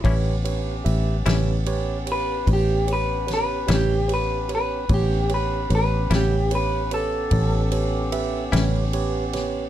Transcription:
<<
  \new Staff \with { instrumentName = "Clean electric guitar" } { \time 12/8 \key a \major \tempo 4. = 50 r2 r8 b'8 g'8 b'8 b'8 g'8 b'8 b'8 | g'8 b'8 b'8 g'8 b'8 a'2. r8 | }
  \new Staff \with { instrumentName = "Tine electric piano" } { \time 12/8 \key a \major <g' b' cis''>8 <g' b' cis''>8 <g' b' e''>8 <g' b' cis''>8 <g' b' cis''>8 <g' b' cis''>8 <g' b' cis''>8 <g' b' cis''>8 <g' b' cis''>8 <g' b' cis''>8 <g' b' cis''>8 <g' b' cis''>8 | <g' b' cis''>8 <g' b' cis''>8 <g' b' cis''>8 <g' b' cis''>8 <g' b' cis''>8 <g' b' cis''>8 <g' b' cis''>8 <g' b' cis''>8 <g' b' e''>8 <g' b' cis''>8 <g' b' cis''>8 <g' b' cis''>8 | }
  \new Staff \with { instrumentName = "Tonewheel organ" } { \time 12/8 \key a \major <b cis' g'>1. | <b cis' g'>1. | }
  \new Staff \with { instrumentName = "Clean electric guitar" } { \time 12/8 \key a \major <a, g cis' e'>8 r4 <a, g cis' e'>8 r2 r8 <a, g cis' e'>8 r4 | r4. <a, g cis' e'>8 r2 r8 <a, g cis' e'>8 r4 | }
  \new Staff \with { instrumentName = "Fingered electric bass" } { \clef bass \time 12/8 \key a \major a,,4 a,,8 a,,4. a,,4. a,,4. | a,,4 a,,8 a,,4. a,,4. a,,4. | }
  \new DrumStaff \with { instrumentName = "Drums" } \drummode { \time 12/8 <bd cymr>8 cymr8 cymr8 <cymr sn>8 cymr8 cymr8 <bd cymr>8 cymr8 <cymr sn>8 <cymr sn>8 cymr8 cymr8 | <bd cymr>8 cymr8 cymr8 <cymr sn>8 cymr8 cymr8 <bd cymr>8 cymr8 cymr8 <cymr sn>8 cymr8 <cymr sn>8 | }
>>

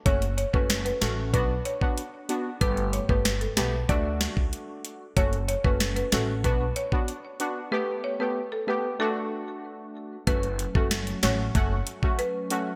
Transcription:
<<
  \new Staff \with { instrumentName = "Marimba" } { \time 4/4 \key fis \phrygian \tempo 4 = 94 cis''16 r16 cis''16 b'16 r16 b'16 a'16 r16 b'16 r16 cis''16 r4 r16 | b'16 r16 cis''16 b'16 r16 a'16 b'16 r16 d''8. r4 r16 | cis''16 r16 cis''16 b'16 r16 b'16 a'16 r16 b'16 r16 cis''16 r4 r16 | b'16 r16 cis''16 b'16 r16 a'16 b'16 r16 a'8. r4 r16 |
b'8 r16 a'16 r8 cis''16 r4 r16 b'8. r16 | }
  \new Staff \with { instrumentName = "Synth stab" } { \time 4/4 \key fis \phrygian <a cis' fis'>16 r8 <a cis' fis'>8. <a cis' fis'>8 <b d' fis'>16 r8 <b d' fis'>16 r8 <b d' fis'>16 r16 | <a b g'>8. <a b g'>16 r8 <a b g'>16 r16 <a d' fis'>4.~ <a d' fis'>16 r16 | <a cis' fis'>16 r8 <a cis' fis'>8. <a cis' fis'>8 <b d' fis'>16 r8 <b d' fis'>16 r8 <b d' fis'>16 r16 | <a b g'>8. <a b g'>16 r8 <a b g'>16 r16 <a d' fis'>4.~ <a d' fis'>16 r16 |
<a cis' fis'>16 r8 <a cis' fis'>8. <a cis' fis'>8 <a cis' fis'>16 r8 <a cis' fis'>16 r8 <a cis' fis'>16 r16 | }
  \new Staff \with { instrumentName = "Analog synth pad" } { \time 4/4 \key fis \phrygian r1 | r1 | r1 | r1 |
<fis a cis'>1 | }
  \new Staff \with { instrumentName = "Upright bass" } { \clef bass \time 4/4 \key fis \phrygian fis,,8. fis,,8. a,,8 b,,8 r4. | g,,8. g,,8. b,,8 d,8. cis,16 r4 | fis,,8. fis,,8. a,,8 b,,8 r4. | r1 |
fis,,8. fis,,8. a,,8 fis,,8 r4. | }
  \new DrumStaff \with { instrumentName = "Drums" } \drummode { \time 4/4 <hh bd>16 hh16 hh16 bd16 <hh sn>16 hh16 <hh sn>8 <hh bd>8 hh16 bd16 hh8 hh8 | <hh bd>16 hh16 hh16 bd16 <hh sn>16 hh16 <hh sn>8 <hh bd>8 <hh sn>16 bd16 hh8 hh8 | <hh bd>16 hh16 hh16 bd16 <hh sn>16 hh16 <hh sn>8 <hh bd>8 hh16 bd16 hh8 hh8 | r4 r4 r4 r4 |
<hh bd>16 hh16 hh16 bd16 <hh sn>16 hh16 <hh sn>8 <hh bd>8 hh16 bd16 hh8 hh8 | }
>>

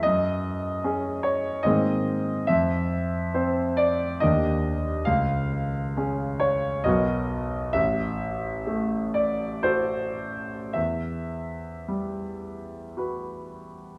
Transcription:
\new Staff \with { instrumentName = "Grand piano" } { \time 3/4 \key a \dorian \tempo 4 = 67 << { dis''4. cis''8 dis''4 | e''4. d''8 dis''4 | eis''4. cis''8 dis''4 | e''4. d''8 c''4 |
e''2 r4 | } \\ { fis,4 <cis' gis'>4 <gis, dis ais bis gis'>4 | f,4 <c' c''>4 <dis, ais d' g'>4 | cis,4 <cis' gis'>4 <b,, fis b fis' ais'>4 | a,,4 a4 <fis' a'>4 |
e,4 g4 <fis' b'>4 | } >> }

